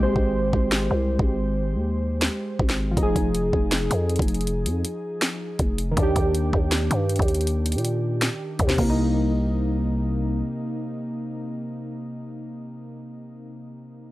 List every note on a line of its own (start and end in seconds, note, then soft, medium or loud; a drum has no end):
0.00 0.15 G#1 loud
0.00 2.90 G#3 medium
0.00 2.93 G4 medium
0.00 2.96 C5 medium
0.16 0.52 G#1 loud
0.16 kick loud
0.53 0.89 G#1 loud
0.53 kick medium
0.72 snare loud
0.72 clap medium
0.91 1.18 C2 loud
1.19 1.77 G#1 loud
1.19 kick loud
1.76 2.29 D#2 loud
2.22 snare loud
2.22 clap medium
2.59 2.95 G#1 loud
2.59 kick medium
2.70 snare medium
2.70 clap medium
2.91 5.90 F3 medium
2.97 3.15 F1 loud
2.97 5.93 D#4 medium
2.97 kick loud
2.97 closed hi-hat medium
3.03 5.96 G#4 medium
3.16 3.52 F1 loud
3.16 kick loud
3.16 closed hi-hat medium
3.35 closed hi-hat medium
3.53 3.89 F1 loud
3.53 kick medium
3.72 snare loud
3.72 clap medium
3.72 closed hi-hat medium
3.91 4.18 F2 loud
3.91 closed hi-hat medium
4.10 closed hi-hat medium
4.16 4.67 F1 loud
4.16 kick loud
4.16 closed hi-hat medium
4.22 closed hi-hat medium
4.28 closed hi-hat medium
4.34 closed hi-hat medium
4.41 closed hi-hat medium
4.47 closed hi-hat medium
4.66 4.84 F2 medium
4.66 closed hi-hat medium
4.85 closed hi-hat medium
5.22 snare loud
5.22 clap medium
5.22 closed hi-hat medium
5.59 5.95 F1 loud
5.59 kick medium
5.59 closed hi-hat medium
5.78 closed hi-hat medium
5.91 8.71 D#3 medium
5.97 6.15 D#2 loud
5.97 8.74 D4 medium
5.97 kick loud
5.97 closed hi-hat medium
6.03 8.77 G4 medium
6.16 6.52 D#2 loud
6.16 kick loud
6.16 closed hi-hat medium
6.35 closed hi-hat medium
6.53 6.89 D#2 loud
6.53 kick medium
6.72 snare loud
6.72 clap medium
6.72 closed hi-hat medium
6.91 7.18 G2 loud
6.91 closed hi-hat medium
7.09 closed hi-hat medium
7.16 7.77 D#2 loud
7.16 kick loud
7.16 closed hi-hat medium
7.22 closed hi-hat medium
7.28 closed hi-hat medium
7.35 closed hi-hat medium
7.41 closed hi-hat medium
7.47 closed hi-hat medium
7.66 closed hi-hat loud
7.72 8.29 A#2 loud
7.72 closed hi-hat medium
7.78 closed hi-hat medium
7.85 closed hi-hat medium
8.22 snare loud
8.22 clap medium
8.22 closed hi-hat medium
8.59 8.77 D#2 loud
8.59 kick medium
8.59 closed hi-hat medium
8.67 11.83 C3 medium
8.67 snare medium
8.67 clap medium
8.78 10.43 C2 loud
8.78 11.94 A#3 medium
8.78 kick loud
8.78 crash medium
8.90 12.06 D#4 medium